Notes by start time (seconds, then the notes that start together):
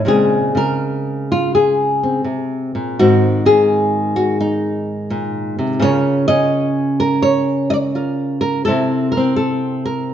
0.05 A#2 C#3 G#3 C4 G#4
0.55 C#3 A#4
1.32 F4
1.55 G#4
2.03 C4
2.24 C3
2.75 A#2
2.99 G#2 D#3 C4 F#4
3.45 D#3 G#4
4.16 F#4
4.41 D#4
5.10 A#2
5.59 C3
5.80 C#3 C#4 F4 A#4 C#5
6.28 C#4 D#5
7.00 A#4
7.22 C#5
7.70 D5 D#5
7.95 F4 A#4
8.41 A#4
8.65 C3 C4 A4
8.69 E4
9.12 A#4
9.17 C4
9.36 A4
9.85 A#4